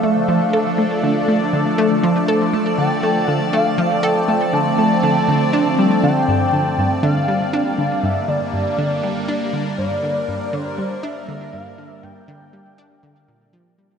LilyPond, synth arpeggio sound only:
\new Staff \with { instrumentName = "Synth arpeggio sound" } { \clef bass \time 4/4 \key g \dorian \tempo 4 = 120 a8 f8 a'8 a8 d8 a8 d8 a8 | f8 a'8 a8 d8 a8 d8 a8 f8 | a'8 a8 d8 a8 d8 d8 d'8 g8 | d8 g,8 d8 g,8 d8 g8 d'8 d8 |
g,8 d8 g,8 d8 g8 d'8 d8 g,8 | d8 g,8 d8 g8 d'8 d8 g,8 d8 | g,8 d8 g8 d'8 d8 bes,8 f8 g8 | }